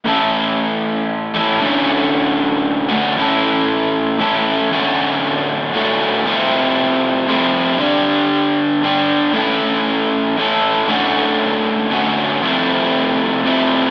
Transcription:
\new Staff \with { instrumentName = "Overdriven electric guitar" } { \time 3/4 \key a \mixolydian \tempo 4 = 117 <a, e a cis' e' a'>2~ <a, e a cis' e' a'>8 <a, e a cis' e' a'>8 | <d, a, d a cis' fis'>2~ <d, a, d a cis' fis'>8 <d, a, d a cis' fis'>8 | <a, e a cis' e' a'>2 <a, e a cis' e' a'>4 | <d, a, d a cis' fis'>2 <d, a, d a cis' fis'>4 |
<f, c f a c' e'>2 <f, c f a c' e'>4 | <g, d g d' g'>2 <g, d g d' g'>4 | <a, e a cis' e' a'>2 <a, e a cis' e' a'>4 | <d, a, d a cis' fis'>2 <d, a, d a cis' fis'>4 |
<f, c f a c' e'>2 <f, c f a c' e'>4 | }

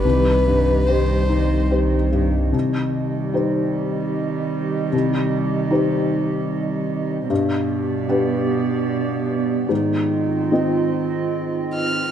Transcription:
<<
  \new Staff \with { instrumentName = "Violin" } { \time 3/4 \key c \minor \tempo 4 = 75 b'4 c''4 r4 | r2. | r2. | r2. |
r2 r8 f'''8 | }
  \new Staff \with { instrumentName = "Ambient pad" } { \time 3/4 \key c \minor <g g' ees''>2. | <g g' ees''>2.~ | <g g' ees''>2. | <b g' d''>2. |
<c' f' ees''>2. | }
  \new Staff \with { instrumentName = "Felt piano" } { \time 3/4 \key c \minor c,8 g,8 <g' c''>8 ees'8 <g' c''>8 g,8 | c,4 <ees' g' c''>2 | c,4 <ees' g' c''>2 | g,4 <d' g' b'>2 |
aes,4 <c' f' ees''>2 | }
  \new Staff \with { instrumentName = "Cello" } { \clef bass \time 3/4 \key c \minor ees8 ees8 ees8 ees8 ees8 ees8 | ees2.~ | ees2. | b,2. |
ees2~ ees8. r16 | }
  \new Staff \with { instrumentName = "Sub bass" } { \clef bass \time 3/4 \key c \minor c,2. | r2. | r2. | r2. |
r2. | }
>>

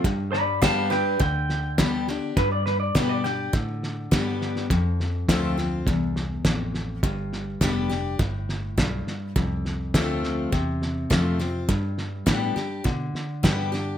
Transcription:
<<
  \new Staff \with { instrumentName = "Clean electric guitar" } { \time 4/4 \key g \mixolydian \tempo 4 = 103 r8 <d'' b''>8 <f'' a''>8 <b' g''>8 g''2 | b'16 d''16 b'16 d''16 b'16 d''16 g''8 r2 | r1 | r1 |
r1 | r1 | }
  \new Staff \with { instrumentName = "Steel-string acoustic guitar" } { \time 4/4 \key g \mixolydian << { r4 <g b d' g'>8 <d' g'>8 r4 <g b d' g'>8 <d' g'>8 | r4 <g b d' g'>8 <d' g'>8 r4 <g b d' g'>4 | r4 <f a c' f'>8 <c' f'>8 r2 | r4 <g b d' g'>8 <d' g'>8 r2 |
r4 <f a c' f'>4 r4 <f a c' f'>8 <c' f'>8 | r4 <g b d' g'>8 <d' g'>8 r4 <g b d' g'>8 <d' g'>8 | } \\ { g,2 d2 | g,2 d2 | f,2 e,4 f,4 | g,2 a,4 g,4 |
f,2 c2 | g,2 d2 | } >> }
  \new Staff \with { instrumentName = "Fingered electric bass" } { \clef bass \time 4/4 \key g \mixolydian g,2 d,2 | g,4 b,4 a,4 g,4 | f,4 d,4 c,4 a,,4 | g,,4 f,,4 g,,4 b,,8 r8 |
c,4 d,4 e,4 f,4 | g,4 a,8 r8 b,8 r8 g,4 | }
  \new DrumStaff \with { instrumentName = "Drums" } \drummode { \time 4/4 <bd sn>8 sn8 <hhp bd sn>8 sn8 <bd sn>8 sn8 <hhp bd sn>8 sn8 | <bd sn>8 sn8 <hhp bd sn>8 sn8 <bd sn>8 sn8 <hhp bd sn>8 sn16 sn16 | <bd sn>8 sn8 <hhp bd sn>8 sn8 <bd sn>8 sn8 <hhp bd sn>8 sn8 | <bd sn>8 sn8 <hhp bd sn>8 sn8 <bd sn>8 sn8 <hhp bd sn>8 sn8 |
<bd sn>8 sn8 <hhp bd sn>8 sn8 <bd sn>8 sn8 <hhp bd sn>8 sn8 | <bd sn>8 sn8 <hhp bd sn>8 sn8 <bd sn>8 sn8 <hhp bd sn>8 sn8 | }
>>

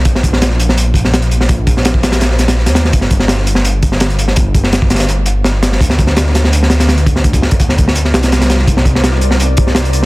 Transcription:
<<
  \new Staff \with { instrumentName = "Analog synth pad" } { \time 4/4 \key c \minor \tempo 4 = 167 r1 | r1 | r1 | r1 |
r1 | r1 | <ees' bes' c'' d''>1 | }
  \new Staff \with { instrumentName = "Detuned saw bass" } { \clef bass \time 4/4 \key c \minor bes,,1 | bes,,8. bes,,2~ bes,,8 ees,8. | g,,1 | g,,8. g,,2.~ g,,16 |
d,1 | d,8. d,4.~ d,16 c,4. | c,1 | }
  \new DrumStaff \with { instrumentName = "Drums" } \drummode { \time 4/4 <hh bd>16 sn16 <hh bd>16 sn16 <hh sn>16 sn16 hh16 sn16 hh8 <hh bd>16 sn16 <hh sn>16 hh16 hh16 sn16 | <hh bd>8 <hh bd>16 sn16 <hh sn>16 bd16 <hh sn>16 <hh sn>16 <hh sn>16 sn16 <hh sn>16 <hh sn>16 sn16 <hh sn>16 <hh sn>16 sn16 | <hh bd>16 sn16 <hh bd>16 sn16 <hh sn>16 sn16 hh16 sn16 hh8 <hh bd>16 sn16 <hh sn>16 hh16 hh16 sn16 | <hh bd>8 <hh bd>16 sn16 <hh sn>16 bd16 <hh sn>32 <hh sn>32 <hh sn>16 hh8 hh8 <hh sn>8 <hh sn>16 sn16 |
<hh bd>16 sn16 <hh bd>16 sn16 <hh sn>16 sn16 <hh sn>16 sn16 hh16 sn16 <hh sn>16 <hh sn>16 <hh sn>16 hh16 <hh bd>16 sn16 | <hh bd>16 <hh bd>16 sn16 <hh bd>16 <hh bd>16 sn16 <hh bd>16 sn16 hh16 sn16 <hh sn>16 <hh sn>16 <hh sn>16 <hh sn>16 <hh sn>16 sn16 | <hh bd>16 sn16 <hh bd>16 sn16 <hh sn>16 sn16 hh16 sn16 hh8 <hh bd>16 sn16 <hh sn>16 hh16 hh8 | }
>>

